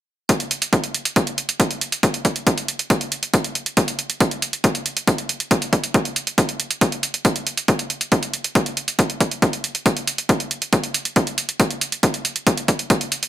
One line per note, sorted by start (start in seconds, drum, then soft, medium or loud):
0.29 kick loud
0.29 closed hi-hat medium
0.40 closed hi-hat medium
0.51 closed hi-hat medium
0.62 closed hi-hat medium
0.73 kick loud
0.73 closed hi-hat medium
0.84 closed hi-hat medium
0.94 closed hi-hat medium
1.05 closed hi-hat medium
1.16 kick loud
1.16 closed hi-hat medium
1.27 closed hi-hat medium
1.38 closed hi-hat medium
1.49 closed hi-hat medium
1.60 kick loud
1.60 closed hi-hat medium
1.71 closed hi-hat medium
1.81 closed hi-hat medium
1.92 closed hi-hat medium
2.03 kick loud
2.03 closed hi-hat medium
2.14 closed hi-hat medium
2.25 kick medium
2.25 closed hi-hat medium
2.36 closed hi-hat medium
2.47 kick loud
2.47 closed hi-hat medium
2.58 closed hi-hat medium
2.68 closed hi-hat medium
2.79 closed hi-hat medium
2.90 kick loud
2.90 closed hi-hat medium
3.01 closed hi-hat medium
3.12 closed hi-hat medium
3.23 closed hi-hat medium
3.34 kick loud
3.34 closed hi-hat medium
3.44 closed hi-hat medium
3.55 closed hi-hat medium
3.66 closed hi-hat medium
3.77 kick loud
3.77 closed hi-hat medium
3.88 closed hi-hat medium
3.99 closed hi-hat medium
4.10 closed hi-hat medium
4.20 kick loud
4.20 closed hi-hat medium
4.31 closed hi-hat soft
4.42 closed hi-hat medium
4.53 closed hi-hat soft
4.64 kick loud
4.64 closed hi-hat medium
4.75 closed hi-hat medium
4.86 closed hi-hat medium
4.97 closed hi-hat medium
5.07 kick loud
5.07 closed hi-hat medium
5.18 closed hi-hat medium
5.29 closed hi-hat medium
5.40 closed hi-hat medium
5.51 kick loud
5.51 closed hi-hat medium
5.62 closed hi-hat medium
5.73 kick medium
5.73 closed hi-hat medium
5.84 closed hi-hat medium
5.94 kick loud
5.94 closed hi-hat medium
6.05 closed hi-hat soft
6.16 closed hi-hat medium
6.27 closed hi-hat medium
6.38 kick loud
6.38 closed hi-hat medium
6.49 closed hi-hat medium
6.60 closed hi-hat medium
6.71 closed hi-hat medium
6.81 kick loud
6.81 closed hi-hat medium
6.92 closed hi-hat soft
7.03 closed hi-hat medium
7.14 closed hi-hat soft
7.25 kick loud
7.25 closed hi-hat medium
7.36 closed hi-hat medium
7.47 closed hi-hat medium
7.57 closed hi-hat soft
7.68 kick loud
7.68 closed hi-hat medium
7.79 closed hi-hat soft
7.90 closed hi-hat medium
8.01 closed hi-hat soft
8.12 kick loud
8.12 closed hi-hat medium
8.23 closed hi-hat soft
8.34 closed hi-hat medium
8.44 closed hi-hat medium
8.55 kick loud
8.55 closed hi-hat medium
8.66 closed hi-hat soft
8.77 closed hi-hat medium
8.88 closed hi-hat soft
8.99 kick loud
8.99 closed hi-hat medium
9.10 closed hi-hat soft
9.20 kick medium
9.20 closed hi-hat medium
9.31 closed hi-hat soft
9.42 kick loud
9.42 closed hi-hat medium
9.53 closed hi-hat soft
9.64 closed hi-hat medium
9.75 closed hi-hat soft
9.86 kick loud
9.86 closed hi-hat medium
9.97 closed hi-hat soft
10.07 closed hi-hat medium
10.18 closed hi-hat medium
10.29 kick loud
10.29 closed hi-hat medium
10.40 closed hi-hat medium
10.51 closed hi-hat medium
10.62 closed hi-hat soft
10.73 kick loud
10.73 closed hi-hat medium
10.84 closed hi-hat medium
10.94 closed hi-hat medium
11.05 closed hi-hat medium
11.16 kick loud
11.16 closed hi-hat medium
11.27 closed hi-hat soft
11.38 closed hi-hat medium
11.49 closed hi-hat soft
11.60 kick loud
11.60 closed hi-hat medium
11.71 closed hi-hat soft
11.81 closed hi-hat medium
11.92 closed hi-hat medium
12.03 kick loud
12.03 closed hi-hat medium
12.14 closed hi-hat soft
12.25 closed hi-hat medium
12.36 closed hi-hat soft
12.47 kick loud
12.47 closed hi-hat medium
12.57 closed hi-hat medium
12.68 kick medium
12.68 closed hi-hat medium
12.79 closed hi-hat medium
12.90 kick loud
12.90 closed hi-hat medium
13.01 closed hi-hat medium
13.12 closed hi-hat medium
13.23 closed hi-hat medium